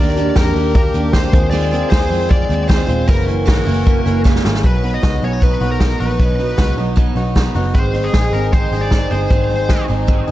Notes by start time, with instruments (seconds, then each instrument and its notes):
Already playing: picked electric bass D#2, steel-string acoustic guitar D#3, clean electric guitar A#3 D4 G4, muted trumpet A#4, lead electric guitar D5
0.00 steel-string acoustic guitar A#3 D4 G4
0.16 steel-string acoustic guitar A#3 D4 G4, hi-hat pedal, open hi-hat
0.36 picked electric bass F2, steel-string acoustic guitar D#3 A#3 D4 G4, lead electric guitar A#4, kick, snare, hi-hat pedal, open hi-hat
0.54 picked electric bass D#2, steel-string acoustic guitar A#3 D4 G4, hi-hat pedal, open hi-hat
0.75 steel-string acoustic guitar D#3 A#3 D4 G4, muted trumpet G4, kick, hi-hat pedal, open hi-hat
0.94 picked electric bass D#2, steel-string acoustic guitar A#3 D4 G4, hi-hat pedal, open hi-hat
1.13 steel-string acoustic guitar D#3 A#3 D4 G4, lead electric guitar C5, kick, snare, hi-hat pedal, open hi-hat
1.32 picked electric bass D#2, clean electric guitar D#3, steel-string acoustic guitar G#3 C4 F4, muted trumpet G#4, kick, hi-hat pedal, open hi-hat
1.51 steel-string acoustic guitar D#3 G#3 C4 F4, lead electric guitar D5, hi-hat pedal, open hi-hat
1.71 steel-string acoustic guitar G#3 C4 F4, hi-hat pedal, open hi-hat
1.90 picked electric bass D#2, steel-string acoustic guitar D#3 G#3 C4 F4, clean electric guitar G#4, lead electric guitar C5, kick, snare, hi-hat pedal, open hi-hat
2.10 picked electric bass F2, steel-string acoustic guitar G#3 C4 F4, hi-hat pedal, open hi-hat
2.29 steel-string acoustic guitar D#3 G#3 C4 F4, lead electric guitar D5, kick, hi-hat pedal, open hi-hat
2.49 picked electric bass D#2, steel-string acoustic guitar G#3 C4 F4, hi-hat pedal, open hi-hat
2.68 steel-string acoustic guitar D#3 G#3 C4 F4, lead electric guitar C5, kick, snare, hi-hat pedal, open hi-hat
2.87 picked electric bass D#1, steel-string acoustic guitar G#3 C4 F4, hi-hat pedal, open hi-hat
3.07 picked electric bass F#1, steel-string acoustic guitar F#2 C#3 E3 A#3 E4, muted trumpet F#4, lead electric guitar A#4, kick, hi-hat pedal, open hi-hat
3.26 steel-string acoustic guitar E3 A#3 E4, clean electric guitar C#4, hi-hat pedal, open hi-hat
3.45 picked electric bass G#1, steel-string acoustic guitar F#2 C#3 E3 A#3 E4, clean electric guitar F#4, kick, snare, hi-hat pedal, open hi-hat
3.65 picked electric bass F#1, steel-string acoustic guitar E3 A#3 E4, clean electric guitar C#4, hi-hat pedal, open hi-hat
3.85 steel-string acoustic guitar C#3 E3 A#3 E4, kick, hi-hat pedal, open hi-hat
4.05 picked electric bass F#1, steel-string acoustic guitar E3 A#3 E4, clean electric guitar C#4, hi-hat pedal, open hi-hat
4.24 steel-string acoustic guitar F#2 C#3 E3 A#3 E4, muted trumpet E4, kick, snare
4.36 snare
4.44 picked electric bass G#1, steel-string acoustic guitar E3 A#3 E4, clean electric guitar C#4, muted trumpet E4, snare
4.54 snare
4.64 picked electric bass B1, steel-string acoustic guitar B2 F#3 B3 D#4, lead electric guitar B4, kick, closed hi-hat
4.82 steel-string acoustic guitar F#3 B3 D#4, open hi-hat
4.94 lead electric guitar D#5
5.02 picked electric bass C#2, steel-string acoustic guitar B2 F#3 B3 D#4, clean electric guitar F#4, kick, snare, closed hi-hat
5.22 picked electric bass B1, steel-string acoustic guitar F#3 B3 D#4, clean electric guitar C#4, lead electric guitar C#5, open hi-hat
5.33 clean electric guitar D#4
5.42 steel-string acoustic guitar B2 F#3 B3 D#4, lead electric guitar B4, kick, closed hi-hat
5.61 picked electric bass B1, steel-string acoustic guitar F#3 B3 D#4, clean electric guitar F#4, open hi-hat
5.72 lead electric guitar A#4
5.80 steel-string acoustic guitar B2 F#3 B3 D#4, kick, snare, closed hi-hat
6.00 picked electric bass A#1, steel-string acoustic guitar F#3 B3 D#4, clean electric guitar F#4, lead electric guitar B4, open hi-hat
6.20 picked electric bass B1, steel-string acoustic guitar B2 F#3 B3 D#4, kick, closed hi-hat
6.38 steel-string acoustic guitar F#3 B3 D#4, open hi-hat
6.57 picked electric bass C#2, steel-string acoustic guitar B2 F#3 B3 D#4, clean electric guitar F#4, kick, snare, closed hi-hat
6.77 picked electric bass B1, steel-string acoustic guitar F#3 B3 D#4, open hi-hat
6.96 steel-string acoustic guitar B2 F#3 B3 D#4, kick, closed hi-hat
7.16 picked electric bass B1, steel-string acoustic guitar F#3 B3 D#4, clean electric guitar F#4, open hi-hat
7.35 steel-string acoustic guitar B2 F#3 B3 D#4, kick, snare, closed hi-hat
7.55 picked electric bass F#1, steel-string acoustic guitar F#3 B3 D#4, clean electric guitar F#4, open hi-hat
7.74 picked electric bass G#1, steel-string acoustic guitar G#2 D#3 G#3 C4 D#4, lead electric guitar C5, kick, closed hi-hat
7.94 steel-string acoustic guitar G#3 C4 D#4, open hi-hat
8.04 lead electric guitar G#4
8.13 picked electric bass A#1, steel-string acoustic guitar D#3 G#3 C4 D#4, clean electric guitar G#4, kick, snare, closed hi-hat
8.31 picked electric bass G#1, steel-string acoustic guitar C4 D#4, lead electric guitar A#4, open hi-hat
8.36 steel-string acoustic guitar G#3
8.52 steel-string acoustic guitar G#2 D#3 G#3 C4 D#4, lead electric guitar C5, kick, closed hi-hat
8.71 picked electric bass G#1, steel-string acoustic guitar C4 D#4, clean electric guitar G#4, open hi-hat
8.76 steel-string acoustic guitar G#3
8.81 lead electric guitar D5
8.91 steel-string acoustic guitar D#3 G#3 C4 D#4, kick, snare
9.11 picked electric bass G1, steel-string acoustic guitar G#3 C4 D#4, clean electric guitar G#4, lead electric guitar C5, open hi-hat
9.30 picked electric bass G#1, steel-string acoustic guitar G#2 D#3 G#3 C4 D#4, kick, closed hi-hat
9.50 steel-string acoustic guitar G#3 C4 D#4, open hi-hat
9.69 steel-string acoustic guitar D#3 G#3 C4 D#4, clean electric guitar G#4, kick, snare, closed hi-hat
9.88 picked electric bass G#1, steel-string acoustic guitar G#3 C4 D#4, open hi-hat
10.07 steel-string acoustic guitar G#2 D#3 G#3 C4 D#4, kick, closed hi-hat
10.27 picked electric bass G1, steel-string acoustic guitar D#4, clean electric guitar G#4, open hi-hat